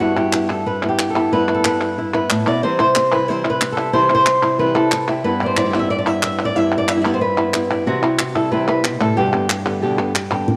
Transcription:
0.00 G2 G3 B3 E4 F#4
0.17 B3 E4 G4, clap
0.33 G3 B3 E4, clap
0.49 A4, clap
0.66 B4, muted nylon-string guitar stroke
0.83 B3 E4, clap
0.89 G4
0.99 clap
1.10 A4
1.16 B3 E4, clap
1.32 G2 G3 B3 E4 B4
1.48 B3 E4, clap
1.54 A4
1.65 G3 B3 E4 B4, clap
1.81 clap
1.98 E4, muted nylon-string guitar stroke
2.14 B3 E4 B4
2.30 A2, clap
2.46 B2 B3 E4 D5, clap
2.63 C3 E3 G3 C4 E4 C5
2.79 G3 C4 E4 C5, clap
2.95 muted nylon-string guitar stroke, clap
3.12 G3 C4 E4 B4, clap
3.28 C3 E3 G3 C4 E4 C5
3.44 G3 C4 E4, clap
3.50 B4
3.61 muted nylon-string guitar stroke, clap
3.72 A4
3.77 G3 C4 E4, clap
3.93 C3 E3 G3 C4 E4 C5
4.10 G3 C4 E4
4.15 C5
4.26 muted nylon-string guitar stroke, clap
4.42 G3 C4 E4, clap
4.59 C3 E3 G3 C4 E4 B4
4.75 G3 C4 E4 A4, clap
4.92 muted nylon-string guitar stroke, clap
5.08 G3 C4 E4 G4, clap
5.24 G2 G3 B3 E4 B4
5.41 D5, clap
5.46 C5
5.57 B3 E4 D5, clap
5.65 G3 B3 E4
5.69 G3 B3 E4
5.74 G3 B3 E4, clap
5.79 E5
5.90 D5, muted nylon-string guitar stroke
5.99 D5
6.06 B3 E4 E5
6.22 G3 B3 E4 E5, clap
6.39 clap
6.45 D5
6.55 G2 G3 B3 E4 E5
6.72 clap
6.78 D5
6.88 B3 E4 E5, clap
6.96 G3 B3 E4
7.00 G3 B3 E4
7.05 G3 B3 E4, clap
7.14 C5
7.21 B4, muted nylon-string guitar stroke
7.37 B3 E4, clap
7.54 G3 B3 E4, clap
7.70 E4 D5, clap
7.86 C3 E3 G3 C4 E4 F#4
8.03 G3 C4 E4 G4, clap
8.19 muted nylon-string guitar stroke, clap
8.35 G3 C4 E4 A4, clap
8.51 C3 E3 G3 C4 E4 B4
8.68 G3 C4 E4 B4, clap
8.84 B2, muted nylon-string guitar stroke, clap
9.00 A2 G3 C4 E4 A4, clap
9.16 G2 B2 D3 G3 B3 G4
9.33 D3 G3 B3 G4, clap
9.49 muted nylon-string guitar stroke, clap
9.66 D3 G3 B3 G4, clap
9.82 G2 B2 D3 G3 B3 G4
9.98 D3 G3 B3 G4, clap
10.15 muted nylon-string guitar stroke, clap
10.31 D3 G3 B3 D4 G4, clap
10.48 muted nylon-string guitar stroke

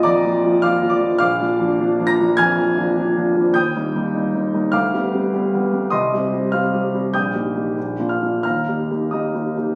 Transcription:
Already playing: F3 A#3 F4 D5 D#5 A#5 D6 D#6
0.03 F2 D5 A#5 D6
0.25 F3 A#3 F4
0.44 F3 A#3 F4
0.62 F3 A#3 F4 F5 D6 F6
0.82 F3 A#3 F4
0.90 D5 D6
1.00 F3 A#3 F4
1.18 A#1 F5 D6 F6
1.40 F3 A#3 D4
1.60 F3 A#3 D4
1.79 F3 A#3 D4
1.99 F3 A#3 D4
2.07 A#5 A#6
2.19 F3 A#3 D4
2.37 F2 G#5 F6 G#6
2.58 F3 A#3 D4
2.77 F3 A#3 D4
2.97 F3 A#3 D4
3.16 F3 A#3 D4
3.36 F3 A#3 D4
3.52 D#2 G5 D#6 G6
3.76 G3 A#3 D#4
3.95 G3 A#3 D#4
4.14 G3 A#3 D#4
4.34 G3 A#3 D#4
4.54 G3 A#3 D#4
4.72 D2 F5 D6 F6
4.93 G3 B3 G4
5.13 G3 B3 G4
5.34 G3 B3 G4
5.53 G3 B3 G4
5.72 G3 B3 G4
5.90 C2 D#5 C6 D#6
6.13 G3 C4 G4
6.33 G3 C4 G4
6.52 G3 C4 G4 F5 F6
6.74 G3 C4 G4
6.94 G3 C4 G4
7.14 A#1 G5 D#6 G6
7.34 A#3 D#4 G4
7.56 A#3 D#4 G4
7.78 A#1
7.99 A#3 D4 F4
8.09 F5 F6
8.22 A#3 D4 F4
8.43 D#2 F5 A#5 F6
8.68 A#3 D#4 G4
8.91 A#3 D#4 G4
9.11 A#3 D#4 G4 D#5 A#5 D#6
9.34 A#3 D#4 G4
9.57 A#3 D#4 G4

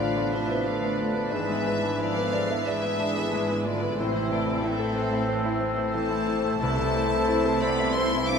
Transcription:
Already playing: A1 A2 D3 F3 A3 B3 D4 F4 B4 D5 F5
0.00 A3 F4 F5
0.16 B3 D4 F4
0.33 C3 A3 D4 E4 F4 C5 E5
0.50 B3 D4
0.67 D3 A3 F4 D5 F5
0.83 B3 D4
0.99 A3 F4 A4
1.15 B3 D4
1.31 G#1 G#2 E3 G#3 D4 G#4 B4 E5
1.48 G#3 B3 E4
1.66 G#3 B3 D4
1.81 B3 D4 E4
1.99 F3 G#3 D4 E4 A4 D5 F5
2.16 B3 E4 B4
2.33 G#3 D4 C5 D5
2.50 B3 E4 E5
2.66 E3 G#3 D4 G#4 B4 D5 E5
2.83 B3 E4
2.99 G#3 D4 A4
3.16 B3 E4
3.32 G#3 D4 B4
3.50 B3 E4
3.65 D3 G#3 D4 F4 D5
3.83 B3 E4
3.97 A1 A2 C3 E3 C4 E4 A4 C5
4.15 E3 A3 E4
4.31 E3 A3 C4 D5
4.48 A3 C4 E4
4.63 A2 E3 C4 E4 A4 E5
4.79 A3 E4 A4
4.96 E3 C4 C5
5.12 A3 E4 E5
5.28 E3 C4 C5
5.45 A3 E4
5.61 E3 C4
5.78 A3 E4
5.94 E3 A3 C4 C5 A5
6.11 A3 E4
6.28 E3 C4
6.44 A3 E4
6.61 C2 C3 E3 A3 C4 E4 A4 C5 A5
6.77 C3 A3 C4
6.94 A3 C4 E4
7.10 A3 C4
7.27 C4 E4 C5
7.45 A3 C4 A4
7.61 B3 C4 E4 C5 D5 B5
7.80 A3 C4 E5
7.95 C4 E4 C5 E5 C6
8.13 A3 C4 E4
8.27 C4 D4 E4 F5 D6
8.31 C4

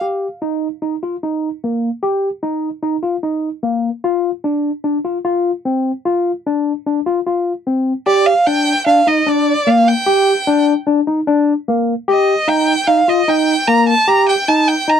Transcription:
0.01 G4
0.42 D#4
0.82 D#4
1.03 F4
1.23 D#4
1.64 A#3
2.03 G4
2.43 D#4
2.83 D#4
3.03 F4
3.23 D#4
3.63 A#3
4.04 F4
4.44 D4
4.84 D4
5.05 F4
5.25 F4
5.65 C4
6.05 F4
6.46 D4
6.87 D4
7.06 F4
7.27 F4
7.67 C4
8.06 G4 D5
8.26 F5
8.46 D4 G5
8.86 D4 F5
9.07 D#4 D#5
9.27 D4 D5
9.67 A#3 F5
9.88 G5
10.06 G4
10.47 D4
10.87 D4
11.07 D#4
11.27 D4
11.68 A#3
12.08 G4 D#5
12.48 D#4 G5
12.87 D#4 F5
13.08 F4 D#5
13.28 D#4 G5
13.67 A#3 A#5
13.88 A5
14.08 G4 A#5
14.29 G5
14.48 D#4 A5
14.68 G5
14.88 D#4 A#5

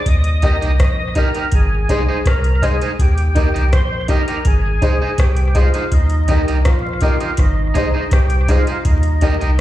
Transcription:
0.06 D#2 D#5, kick, closed hi-hat
0.24 closed hi-hat
0.42 D#4 G4 A#4 D#5, kick, closed hi-hat
0.61 C2 D#4 G4 A#4 D#5, closed hi-hat
0.80 A#1 D#5, kick, cross-stick, closed hi-hat
0.99 A#4 D#5
1.15 D#4 G4 A#4 D#5, kick, closed hi-hat
1.34 D#4 G4 A#4 D#5, closed hi-hat
1.52 G#1 G#4, kick, closed hi-hat
1.89 C2 D#4 G#4 C5 D#5, kick, closed hi-hat
2.08 D#4 G#4 C5 D#5
2.26 C2 A#4, kick, cross-stick, closed hi-hat
2.44 closed hi-hat
2.62 D#4 G#4 C5 D#5, kick, closed hi-hat
2.81 D#4 G#4 C5 D#5, closed hi-hat
2.99 D#2 G4, kick, closed hi-hat
3.18 closed hi-hat
3.35 D#4 G4 A#4 D#5, kick, closed hi-hat
3.54 C2 D#4 G4 A#4 D#5, closed hi-hat
3.73 A#1 C5, kick, cross-stick, closed hi-hat
3.91 A#4 D#5
4.08 D#4 G4 A#4 D#5, kick, closed hi-hat
4.28 D#4 G4 A#4 D#5, closed hi-hat
4.45 G#1 G#4, kick, closed hi-hat
4.81 C2 D#4 G#4 C5 D#5, kick, closed hi-hat
5.01 D#4 G#4 C5 D#5
5.18 C2 G4, kick, cross-stick, closed hi-hat
5.37 closed hi-hat
5.55 D#4 F4 G#4 C5 D#5, kick, closed hi-hat
5.74 D#4 G#4 C5 D#5, closed hi-hat
5.92 D#2 D#4, kick, closed hi-hat
6.10 closed hi-hat
6.28 D#4 G4 A#4 D#5, kick, closed hi-hat
6.48 C2 D#4 G4 A#4 D#5, closed hi-hat
6.65 A#1 F4, kick, cross-stick, closed hi-hat
6.85 A#4 D#5
7.01 D#4 G4 A#4 D#5, kick, closed hi-hat
7.20 D#4 G4 A#4 D#5, closed hi-hat
7.37 G#1 D#4, kick, cross-stick, closed hi-hat
7.74 C2 D#4 G#4 C5 D#5, kick, closed hi-hat
7.94 D#4 G#4 C5 D#5
8.11 C2 G4, kick, cross-stick, closed hi-hat
8.30 closed hi-hat
8.48 D#4 F4 G#4 C5 D#5, kick, closed hi-hat
8.67 D#4 G#4 C5 D#5, closed hi-hat
8.85 D#2 D#4, kick, closed hi-hat
9.03 closed hi-hat
9.21 D#4 G4 A#4 D#5, kick, closed hi-hat
9.41 C2 D#4 G4 A#4 D#5, closed hi-hat

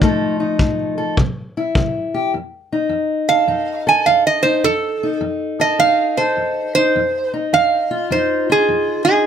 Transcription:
0.01 F2 F3 A3 D#4 A4, kick
0.40 D#4
0.59 F2, kick
0.98 A4
1.17 C3, kick
1.57 E4
1.75 C3, kick
2.14 G4
2.34 F2
2.72 D#4
2.89 F2
3.29 A4 F5
3.48 F2 D#4
3.87 A4 G#5
4.06 F2 F5
4.27 D#5
4.43 D#4 C5
4.64 F2 A4
5.03 D#4
5.21 F2
5.60 A4 D#5
5.79 F2 D#4 F5
6.17 A4 C5
6.37 F2
6.75 D#4 C5
6.96 F2
7.34 D#4
7.53 F2 F5
7.91 F4
8.10 F2 D#4 C5
8.50 F4 G#4
8.69 F2
9.05 D#4 G#4

